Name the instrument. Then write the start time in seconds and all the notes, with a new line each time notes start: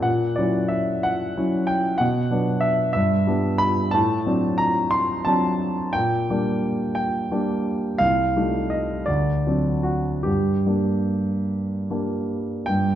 grand piano
0.00 A#2 F#5
0.36 F#3 C#4 E4 D5
0.68 E5
1.03 F#5
1.37 F#3 C#4 E4
1.67 G5
1.98 B2 F#5
2.30 F#3 B3 D4
2.61 E5
2.93 G2 E5
3.27 G3 B3 D4
3.58 B5
3.91 A2 A5
4.26 F#3 C4 D4
4.58 A#5
4.91 C6
5.25 F#3 C4 D4 A5
5.93 A#2 G5
6.30 G3 A#3 D4
6.95 G5
7.31 G3 A#3 D4
7.98 C2 F5
8.37 G3 A3 D#4
8.70 D#5
9.06 D2 D5
9.47 F#3 C4 D4
9.83 F#4
10.23 G2 G4
10.66 G3 A#3 D4
11.91 G3 A#3 D4
12.66 G2 G5